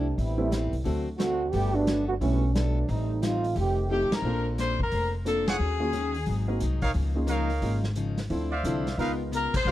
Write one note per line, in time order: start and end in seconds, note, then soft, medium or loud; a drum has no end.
0.00 0.14 C2 medium
0.00 0.17 G3 medium
0.00 0.17 A3 medium
0.00 0.17 C4 medium
0.00 0.17 D4 medium
0.17 0.69 A1 medium
0.17 0.86 G3 medium
0.17 0.40 A3 soft
0.17 0.85 B3 medium
0.17 0.41 C4 soft
0.17 0.86 C4 medium
0.17 0.85 E4 medium
0.17 0.41 G4 medium
0.17 0.41 B4 medium
0.17 open hi-hat soft
0.38 0.50 G3 medium
0.38 0.50 A3 medium
0.38 0.50 B3 medium
0.38 0.50 C4 medium
0.38 0.50 E4 medium
0.51 0.74 A3 medium
0.51 0.74 C4 medium
0.51 0.75 G4 medium
0.51 0.75 B4 medium
0.51 snare medium
0.51 closed hi-hat medium
0.73 0.84 C2 medium
0.73 open hi-hat soft
0.84 1.50 D2 medium
0.84 1.07 D3 medium
0.84 1.04 F#3 medium
0.84 1.08 A3 medium
0.84 1.05 A3 medium
0.84 1.05 C4 medium
0.84 1.08 C4 medium
0.84 1.05 D4 medium
0.84 1.08 F#4 medium
0.84 1.05 A4 medium
0.84 open hi-hat soft
1.18 1.41 D3 medium
1.18 1.50 D3 medium
1.18 1.41 A3 medium
1.18 1.50 A3 medium
1.18 1.50 C4 medium
1.18 1.42 C4 medium
1.18 1.50 F#4 loud
1.18 1.42 F#4 medium
1.18 snare medium
1.18 closed hi-hat medium
1.52 2.18 G1 medium
1.52 1.74 D3 medium
1.52 1.75 G3 soft
1.52 1.73 A3 medium
1.52 1.73 B3 medium
1.52 1.76 B3 medium
1.52 1.76 F#4 medium
1.52 1.74 G4 loud
1.52 1.76 A4 medium
1.52 open hi-hat soft
1.73 2.08 F#3 medium
1.73 1.85 G3 medium
1.73 1.85 A3 medium
1.73 2.07 A3 medium
1.73 1.85 B3 medium
1.73 2.08 B3 medium
1.73 1.86 D4 medium
1.73 2.08 D4 loud
1.73 1.86 F#4 medium
1.87 2.10 G3 medium
1.87 2.10 B3 medium
1.87 2.10 F#4 medium
1.87 2.10 A4 medium
1.87 snare medium
1.87 closed hi-hat medium
2.08 2.14 D3 medium
2.08 2.14 A3 medium
2.08 2.14 B3 medium
2.08 2.14 F#4 medium
2.21 2.85 B1 medium
2.21 2.53 F#3 medium
2.21 2.43 G3 soft
2.21 2.40 G3 medium
2.21 2.40 A3 medium
2.21 2.53 A3 medium
2.21 2.40 B3 medium
2.21 2.53 B3 medium
2.21 2.44 B3 medium
2.21 2.53 C#4 medium
2.21 2.40 D4 medium
2.21 2.40 E4 medium
2.21 2.44 F#4 medium
2.21 2.45 A4 medium
2.21 open hi-hat soft
2.54 2.88 F#3 medium
2.54 2.78 G3 medium
2.54 2.88 A3 medium
2.54 2.89 B3 medium
2.54 2.78 B3 medium
2.54 2.89 D4 medium
2.54 2.78 F#4 medium
2.54 2.78 A4 medium
2.54 snare medium
2.54 closed hi-hat medium
2.88 3.53 A1 loud
2.88 3.11 A2 soft
2.88 3.22 G3 medium
2.88 3.12 G3 medium
2.88 3.23 A3 medium
2.88 3.22 C4 medium
2.88 3.12 C4 medium
2.88 3.23 D#4 medium
2.88 3.12 D#4 soft
2.88 open hi-hat soft
3.22 3.45 A2 medium
3.22 3.45 G3 medium
3.22 3.58 A3 medium
3.22 3.45 C4 medium
3.22 3.57 C4 medium
3.22 3.46 D#4 medium
3.22 3.57 D#4 medium
3.22 3.57 F4 medium
3.22 snare medium
3.22 closed hi-hat medium
3.44 open hi-hat soft
3.54 4.07 F1 medium
3.54 3.78 F3 medium
3.54 3.78 A3 medium
3.54 3.79 D#4 medium
3.54 3.79 G4 medium
3.54 open hi-hat soft
3.60 4.09 D#3 medium
3.60 4.10 A3 medium
3.60 4.10 C4 medium
3.60 4.09 G4 medium
3.89 4.12 F3 medium
3.89 4.13 A3 medium
3.89 4.24 A3 medium
3.89 4.24 C4 medium
3.89 4.13 D#4 medium
3.89 4.24 D#4 medium
3.89 4.24 F4 medium
3.89 4.13 G4 medium
3.89 4.24 G4 medium
3.89 4.11 G4 medium
4.10 4.46 A#4 medium
4.10 muted upright bass stroke soft
4.10 snare medium
4.10 ride medium
4.22 4.74 A#1 medium
4.22 4.46 A#3 soft
4.22 4.75 A#3 medium
4.22 4.75 C4 medium
4.22 4.46 D4 medium
4.22 4.75 D4 medium
4.22 4.76 F4 medium
4.22 4.46 A4 soft
4.22 4.75 A4 medium
4.22 4.47 C5 medium
4.58 4.81 A#3 medium
4.58 4.81 D4 medium
4.58 4.81 A4 medium
4.58 4.81 C5 medium
4.58 4.79 C5 loud
4.58 snare soft
4.58 closed hi-hat medium
4.79 4.91 F2 medium
4.79 5.12 A#4 medium
4.79 kick medium
4.92 5.56 F1 medium
4.92 5.14 A#3 soft
4.92 5.14 D4 medium
4.92 5.15 A4 soft
4.92 5.15 C5 soft
4.92 open hi-hat soft
5.25 5.44 A#3 medium
5.25 5.49 A#3 medium
5.25 5.44 C4 medium
5.25 5.45 D4 medium
5.25 5.49 D4 medium
5.25 5.45 F4 medium
5.25 5.45 A4 medium
5.25 5.46 A4 medium
5.25 5.49 A4 medium
5.25 5.49 C5 medium
5.25 closed hi-hat medium
5.46 5.55 F4 medium
5.46 5.55 G#4 medium
5.46 6.49 G#4 medium
5.46 5.55 C#5 medium
5.46 5.55 F#5 medium
5.46 snare medium
5.46 ride medium
5.59 6.24 D#2 medium
5.59 5.82 D#3 soft
5.59 5.82 G#3 medium
5.59 5.83 C#4 soft
5.59 5.83 F#4 medium
5.80 5.92 A#3 medium
5.80 5.92 C#4 medium
5.80 5.92 F4 medium
5.80 5.92 F#4 medium
5.80 5.92 G#4 medium
5.93 6.16 D#3 medium
5.93 6.16 G#3 medium
5.93 6.16 C#4 medium
5.93 6.16 F#4 medium
5.93 closed hi-hat medium
6.14 open hi-hat soft
6.26 6.58 G#1 medium
6.26 6.49 G#2 medium
6.26 6.50 F#3 medium
6.26 6.50 C4 medium
6.26 6.50 D#4 medium
6.26 open hi-hat soft
6.48 6.59 A#3 medium
6.48 6.60 C4 medium
6.48 6.60 D#4 medium
6.48 6.60 F#4 medium
6.48 6.60 A#4 medium
6.60 6.93 C2 medium
6.60 6.83 G#2 medium
6.60 6.84 F#3 medium
6.60 6.84 C4 medium
6.60 6.84 D#4 medium
6.60 closed hi-hat medium
6.82 6.91 D#4 medium
6.82 6.91 A#4 medium
6.82 6.91 C#5 medium
6.82 6.91 F5 loud
6.82 kick medium
6.82 open hi-hat soft
6.94 7.59 C#2 loud
6.94 7.17 C#3 medium
6.94 7.18 F3 medium
6.94 7.18 A#3 medium
6.94 7.18 D#4 medium
6.94 open hi-hat soft
7.15 7.27 A#3 medium
7.15 7.27 C#4 medium
7.15 7.28 D#4 medium
7.15 7.28 F4 medium
7.15 7.28 G#4 medium
7.27 7.50 C#3 medium
7.27 7.50 F3 medium
7.27 7.51 A#3 medium
7.27 7.51 D#4 medium
7.27 7.80 D#4 medium
7.27 7.80 A#4 medium
7.27 7.80 C#5 medium
7.27 7.80 F5 loud
7.27 closed hi-hat medium
7.50 open hi-hat soft
7.61 8.27 G#1 medium
7.61 7.84 C#3 medium
7.61 7.85 F3 medium
7.61 7.82 A#3 soft
7.61 7.85 A#3 medium
7.61 7.82 C#4 soft
7.61 7.85 D#4 medium
7.61 7.82 D#4 soft
7.61 7.82 F4 soft
7.61 7.82 G#4 medium
7.61 open hi-hat soft
7.84 snare soft
7.96 8.19 C#3 medium
7.96 8.19 F3 medium
7.96 8.19 A#3 medium
7.96 8.20 D#4 medium
7.96 closed hi-hat medium
8.17 snare soft
8.17 open hi-hat soft
8.30 8.62 D2 medium
8.30 8.53 D3 medium
8.30 8.54 F3 medium
8.30 8.49 C4 medium
8.30 8.54 C4 medium
8.30 8.50 D4 medium
8.30 8.49 E4 medium
8.30 8.54 E4 medium
8.30 8.50 F4 medium
8.30 8.50 A4 medium
8.30 open hi-hat soft
8.52 8.96 C5 medium
8.52 8.96 D5 medium
8.52 8.96 E5 medium
8.52 8.96 F5 medium
8.63 8.95 C2 medium
8.63 8.88 D3 medium
8.63 8.88 F3 medium
8.63 8.84 C4 medium
8.63 8.88 C4 medium
8.63 8.84 D4 medium
8.63 8.84 E4 medium
8.63 8.88 E4 medium
8.63 8.84 F4 medium
8.63 8.84 A4 medium
8.63 closed hi-hat medium
8.87 snare soft
8.87 open hi-hat soft
8.98 9.49 C#2 medium
8.98 9.21 C#3 medium
8.98 9.49 G#3 medium
8.98 9.49 B3 medium
8.98 9.22 B3 medium
8.98 9.49 D#4 medium
8.98 9.13 D#4 medium
8.98 9.49 F4 medium
8.98 9.22 F4 medium
8.98 9.13 A#4 medium
8.98 9.50 A#4 medium
8.98 9.23 A#4 medium
8.98 9.13 B4 medium
8.98 9.13 F5 medium
8.98 open hi-hat soft
9.32 9.55 C#3 medium
9.32 9.55 B3 medium
9.32 9.55 F4 medium
9.32 9.55 A#4 medium
9.32 9.53 A#4 loud
9.32 closed hi-hat medium
9.54 9.71 C5 loud
9.54 muted upright bass stroke soft
9.54 kick medium
9.54 crash medium
9.65 9.71 C2 medium
9.65 9.71 C3 soft
9.65 9.71 G3 medium
9.65 9.71 A#3 medium
9.65 9.71 D4 medium
9.65 9.71 D#4 soft
9.65 9.71 D#4 medium
9.65 9.71 F4 medium
9.65 9.71 F4 soft
9.65 9.71 A#4 medium
9.65 9.71 D5 medium
9.65 9.71 F5 loud